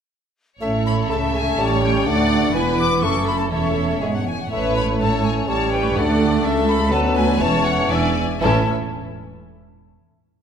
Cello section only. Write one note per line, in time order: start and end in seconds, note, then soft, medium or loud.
0.61 1.07 A2 soft
1.10 1.58 C#3 medium
1.59 2.06 A2 medium
2.07 2.54 D2 medium
2.54 2.99 E2 medium
3.02 3.52 F#2 medium
3.52 3.97 E2 soft
4.02 4.25 G#2 soft
4.27 4.52 E2 soft
4.52 5.44 A2 soft
5.49 5.96 A2 medium
5.97 6.44 D2 medium
6.44 6.91 C#2 medium
6.92 7.40 D2 medium
7.40 7.89 E2 medium
7.90 8.20 E2 medium
8.42 8.69 A2 medium